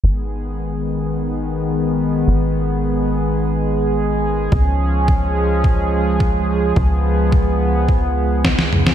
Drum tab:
SD |----------------|----------------|----------------|------------oo-o|
T2 |----------------|----------------|----------------|--------------o-|
BD |----------------|----------------|o---o---o---o---|o---o---o---o---|